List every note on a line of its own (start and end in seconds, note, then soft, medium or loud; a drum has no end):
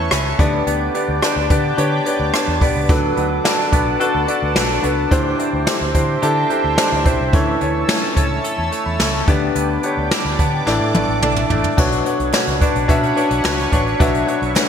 0.00 0.39 D3 medium
0.00 0.45 E3 medium
0.00 0.39 A3 medium
0.00 0.10 C#4 medium
0.00 0.41 C#4 medium
0.00 0.41 E4 medium
0.00 0.37 A4 medium
0.00 0.41 A4 medium
0.00 0.45 A4 medium
0.00 0.39 B4 loud
0.00 0.37 C#5 medium
0.00 0.41 C#5 loud
0.00 0.35 E5 medium
0.00 0.41 E5 medium
0.00 0.11 C#6 medium
0.00 0.37 C#6 medium
0.11 0.32 C#2 medium
0.11 0.45 C#4 medium
0.11 0.24 B5 medium
0.11 cross-stick loud
0.11 closed hi-hat medium
0.25 0.52 A5 medium
0.38 0.60 D2 medium
0.38 1.18 D3 medium
0.38 0.67 B3 medium
0.38 0.87 D4 medium
0.38 0.87 G4 medium
0.38 5.07 B4 medium
0.38 0.87 B4 medium
0.38 2.87 D5 medium
0.38 0.88 D5 medium
0.38 2.87 G5 medium
0.38 7.30 D6 medium
0.38 kick medium
0.38 closed hi-hat medium
0.67 0.88 D2 loud
0.67 0.94 B3 medium
0.67 closed hi-hat medium
0.94 1.50 B3 medium
0.94 1.18 D4 medium
0.94 1.19 G4 medium
0.94 1.19 B4 medium
0.94 1.19 D5 medium
0.94 closed hi-hat medium
1.08 1.19 D2 medium
1.22 1.46 D4 medium
1.22 2.33 D4 medium
1.22 1.46 G4 medium
1.22 1.46 B4 medium
1.22 1.47 D5 medium
1.22 cross-stick loud
1.22 closed hi-hat medium
1.36 1.47 D2 medium
1.50 1.71 D3 loud
1.50 2.06 B3 medium
1.50 1.74 D4 medium
1.50 1.74 G4 medium
1.50 1.74 B4 medium
1.50 1.75 D5 medium
1.50 kick medium
1.50 closed hi-hat medium
1.77 1.99 D3 medium
1.77 2.02 D4 medium
1.77 2.02 G4 medium
1.77 2.95 G4 medium
1.77 2.02 B4 medium
1.77 2.02 C#5 loud
1.77 closed hi-hat medium
2.06 2.61 B3 medium
2.06 2.30 D4 medium
2.06 2.30 G4 medium
2.06 2.30 B4 medium
2.06 2.30 D5 medium
2.06 closed hi-hat medium
2.20 2.30 D2 medium
2.33 2.58 D4 medium
2.33 3.44 D4 medium
2.33 2.58 G4 medium
2.33 2.58 B4 medium
2.33 2.58 C#5 medium
2.33 cross-stick loud
2.33 closed hi-hat medium
2.48 2.58 E2 medium
2.61 2.72 B1 medium
2.61 3.16 B3 medium
2.61 2.85 D4 medium
2.61 2.85 G4 medium
2.61 2.86 B4 medium
2.61 2.86 D5 medium
2.61 kick medium
2.61 open hi-hat medium
2.75 2.86 C#2 medium
2.89 3.10 D2 medium
2.89 3.69 D3 medium
2.89 5.11 F#3 medium
2.89 3.13 D4 medium
2.89 3.13 F#4 medium
2.89 3.14 A4 medium
2.89 3.14 B4 loud
2.89 5.09 F#5 medium
2.89 5.09 A5 medium
2.89 kick loud
2.89 closed hi-hat medium
3.17 3.38 D2 medium
3.17 3.71 B3 medium
3.17 3.41 D4 medium
3.17 3.41 F#4 medium
3.17 3.41 A4 medium
3.17 3.41 B4 medium
3.17 closed hi-hat medium
3.44 3.69 D4 medium
3.44 4.56 D4 medium
3.44 3.69 F#4 medium
3.44 3.69 A4 medium
3.44 3.69 D5 medium
3.44 snare loud
3.44 closed hi-hat medium
3.72 3.93 B1 medium
3.72 4.27 B3 medium
3.72 3.96 D4 medium
3.72 3.96 F#4 medium
3.72 3.97 A4 medium
3.72 3.97 B4 medium
3.72 kick medium
3.72 closed hi-hat medium
4.00 4.24 D4 loud
4.00 4.24 F#4 medium
4.00 4.24 A4 medium
4.00 5.17 A4 medium
4.00 4.24 B4 loud
4.00 closed hi-hat medium
4.15 4.25 D2 medium
4.27 4.83 B3 medium
4.27 4.51 D4 medium
4.27 4.52 F#4 medium
4.27 4.52 A4 medium
4.27 4.52 D5 medium
4.27 closed hi-hat medium
4.42 4.53 D2 medium
4.55 4.77 B1 medium
4.55 4.80 D4 medium
4.55 5.42 D4 medium
4.55 4.80 F#4 medium
4.55 4.80 A4 medium
4.55 4.80 B4 medium
4.55 snare loud
4.55 closed hi-hat medium
4.83 5.04 C#2 medium
4.83 5.17 B3 medium
4.83 5.07 D4 medium
4.83 5.07 F#4 medium
4.83 5.08 A4 medium
4.83 5.08 B4 medium
4.83 closed hi-hat medium
5.11 5.32 D2 loud
5.11 5.91 D3 medium
5.11 7.32 E3 medium
5.11 5.35 D4 loud
5.11 5.35 E4 medium
5.11 5.35 G4 medium
5.11 7.31 C5 medium
5.11 5.36 C5 loud
5.11 9.24 E5 medium
5.11 7.31 G5 medium
5.11 kick loud
5.11 closed hi-hat medium
5.38 5.93 C4 medium
5.38 5.63 D4 medium
5.38 5.63 E4 medium
5.38 5.63 G4 medium
5.38 5.63 D5 medium
5.38 closed hi-hat medium
5.53 5.64 D2 medium
5.66 5.91 D4 medium
5.66 6.77 D4 medium
5.66 5.91 E4 medium
5.66 5.91 G4 medium
5.66 5.91 C5 medium
5.66 snare loud
5.66 closed hi-hat medium
5.81 5.91 D2 medium
5.94 6.16 D3 medium
5.94 6.49 C4 medium
5.94 6.18 D4 medium
5.94 6.19 E4 medium
5.94 6.19 G4 medium
5.94 6.19 C5 medium
5.94 kick medium
5.94 closed hi-hat medium
6.22 6.43 D3 loud
6.22 6.46 D4 loud
6.22 6.46 E4 loud
6.22 7.39 G4 medium
6.22 6.47 G4 medium
6.22 6.47 A4 loud
6.22 closed hi-hat medium
6.50 7.04 C4 medium
6.50 6.74 D4 medium
6.50 6.74 E4 medium
6.50 6.74 G4 medium
6.50 6.75 A4 medium
6.50 closed hi-hat medium
6.64 6.75 D2 medium
6.77 7.02 D4 medium
6.77 7.39 D4 medium
6.77 7.02 E4 medium
6.77 7.02 G4 medium
6.77 7.02 C5 medium
6.77 snare loud
6.77 closed hi-hat medium
6.92 7.02 D2 medium
7.05 7.16 B1 medium
7.05 7.39 C4 medium
7.05 7.29 D4 medium
7.05 7.30 E4 medium
7.05 7.30 G4 medium
7.05 7.30 C5 medium
7.05 kick medium
7.05 closed hi-hat medium
7.20 7.30 C2 medium
7.33 7.54 D2 loud
7.33 8.13 D3 medium
7.33 9.33 E3 medium
7.33 7.57 C#4 loud
7.33 7.57 E4 medium
7.33 7.58 A4 medium
7.33 9.26 C#5 medium
7.33 7.58 C#5 loud
7.33 9.26 A5 medium
7.33 9.26 E6 medium
7.33 kick loud
7.33 closed hi-hat medium
7.60 7.82 D2 medium
7.60 8.15 A3 medium
7.60 7.85 C#4 medium
7.60 7.85 E4 medium
7.60 7.85 A4 medium
7.60 7.85 C#5 medium
7.60 closed hi-hat medium
7.88 8.13 C#4 medium
7.88 8.99 C#4 medium
7.88 8.13 E4 medium
7.88 8.13 A4 medium
7.88 8.13 C#5 medium
7.88 snare loud
7.88 closed hi-hat medium
8.16 8.38 C#2 medium
8.16 8.71 A3 medium
8.16 8.40 C#4 medium
8.16 8.40 E4 medium
8.16 8.41 A4 medium
8.16 8.41 C#5 medium
8.16 kick medium
8.16 closed hi-hat medium
8.44 9.33 A4 medium
8.44 closed hi-hat medium
8.58 8.69 E2 medium
8.58 8.85 A5 medium
8.72 9.27 A3 medium
8.72 closed hi-hat medium
8.86 8.97 E2 medium
8.86 8.99 B5 medium
9.00 9.21 C#2 medium
9.00 9.33 C#4 medium
9.00 9.13 C#6 medium
9.00 snare loud
9.00 closed hi-hat medium
9.14 9.40 A5 medium
9.27 9.49 D2 medium
9.27 10.07 D3 medium
9.27 9.55 B3 medium
9.27 9.76 D4 medium
9.27 9.76 G4 medium
9.27 10.65 B4 medium
9.27 9.76 B4 medium
9.27 11.75 D5 medium
9.27 9.76 D5 medium
9.27 10.65 G5 medium
9.27 11.75 D6 medium
9.27 kick loud
9.27 closed hi-hat medium
9.55 9.77 D2 loud
9.55 9.83 B3 medium
9.55 closed hi-hat medium
9.83 10.38 B3 medium
9.83 10.07 D4 medium
9.83 10.08 G4 medium
9.83 10.08 B4 medium
9.83 10.08 C#5 medium
9.83 closed hi-hat medium
9.97 10.08 D2 medium
10.11 11.23 D4 medium
10.11 snare loud
10.11 closed hi-hat medium
10.25 10.35 D2 medium
10.25 10.38 B5 medium
10.39 10.60 D3 medium
10.39 10.73 B3 medium
10.39 10.52 A5 medium
10.39 kick medium
10.39 closed hi-hat medium
10.53 10.79 G5 medium
10.66 10.77 A1 loud
10.66 11.46 A2 medium
10.66 11.78 E3 medium
10.66 10.90 D4 loud
10.66 10.91 E4 medium
10.66 11.77 A4 medium
10.66 10.91 A4 medium
10.66 10.91 D5 loud
10.66 11.77 E5 medium
10.66 snare medium
10.81 10.91 A2 medium
10.94 11.05 A1 medium
10.94 11.50 A3 medium
10.94 11.18 D4 medium
10.94 11.19 E4 medium
10.94 11.19 A4 medium
10.94 11.19 D5 medium
10.94 high tom medium
11.08 11.19 A1 medium
11.22 11.43 B1 medium
11.22 11.46 D4 medium
11.22 12.37 D4 medium
11.22 11.46 E4 medium
11.22 11.47 A4 medium
11.22 11.47 D5 medium
11.22 mid tom medium
11.36 mid tom medium
11.50 11.61 A1 medium
11.50 11.84 A3 medium
11.50 11.74 D4 medium
11.50 11.74 E4 medium
11.50 11.74 A4 medium
11.50 11.74 D5 medium
11.50 floor tom medium
11.64 floor tom medium
11.77 11.99 B1 loud
11.77 12.57 B2 medium
11.77 12.06 F#3 medium
11.77 12.02 D4 loud
11.77 12.02 F#4 medium
11.77 12.02 B4 medium
11.77 14.69 B4 medium
11.77 14.69 C#5 medium
11.77 12.02 C#5 loud
11.77 13.98 F#5 medium
11.77 14.69 C#6 medium
11.77 kick loud
11.77 crash medium
11.92 closed hi-hat medium
12.05 14.00 F#3 medium
12.05 12.29 D4 medium
12.05 12.30 F#4 medium
12.05 12.30 B4 medium
12.05 12.30 C#5 medium
12.05 closed hi-hat medium
12.20 12.30 B1 medium
12.20 closed hi-hat soft
12.33 12.89 C#4 medium
12.33 12.57 D4 medium
12.33 12.57 F#4 medium
12.33 12.58 B4 medium
12.33 12.58 C#5 medium
12.33 snare loud
12.33 clap medium
12.47 12.58 C#2 medium
12.47 closed hi-hat medium
12.60 12.85 D4 medium
12.60 13.16 D4 medium
12.60 12.85 F#4 medium
12.60 12.85 B4 medium
12.60 12.86 D5 medium
12.60 kick medium
12.60 closed hi-hat medium
12.75 12.86 B1 medium
12.75 closed hi-hat medium
12.88 13.10 B2 loud
12.88 13.45 C#4 medium
12.88 13.13 D4 loud
12.88 13.13 F#4 loud
12.88 13.13 B4 medium
12.88 13.13 E5 loud
12.88 kick medium
12.88 closed hi-hat medium
13.03 closed hi-hat soft
13.16 13.40 D4 medium
13.16 13.72 D4 medium
13.16 13.41 F#4 medium
13.16 13.41 B4 medium
13.16 13.41 C#5 medium
13.16 closed hi-hat medium
13.31 13.41 B1 medium
13.31 closed hi-hat medium
13.44 13.65 C#2 medium
13.44 14.56 C#4 medium
13.44 13.68 D4 medium
13.44 13.68 F#4 medium
13.44 13.69 B4 medium
13.44 13.69 C#5 medium
13.44 snare loud
13.44 clap medium
13.58 closed hi-hat medium
13.72 13.93 A1 medium
13.72 13.96 D4 medium
13.72 14.69 D4 medium
13.72 13.96 F#4 medium
13.72 13.97 B4 medium
13.72 13.97 C#5 medium
13.72 kick medium
13.72 closed hi-hat medium
13.87 closed hi-hat soft
14.00 14.21 B1 loud
14.00 14.69 B2 medium
14.00 14.28 F#3 medium
14.00 14.24 D4 loud
14.00 14.24 F#4 medium
14.00 14.24 B4 medium
14.00 14.69 E5 medium
14.00 14.24 E5 loud
14.00 kick loud
14.00 closed hi-hat medium
14.14 closed hi-hat medium
14.27 14.69 F#3 medium
14.27 14.52 D4 medium
14.27 14.52 F#4 medium
14.27 14.52 B4 medium
14.27 14.52 C#5 medium
14.27 closed hi-hat medium
14.42 14.52 B1 medium
14.42 closed hi-hat soft
14.55 14.69 C#4 medium
14.55 14.69 D4 medium
14.55 14.69 F#4 medium
14.55 14.69 B4 medium
14.55 14.69 C#5 medium
14.55 snare loud
14.55 clap medium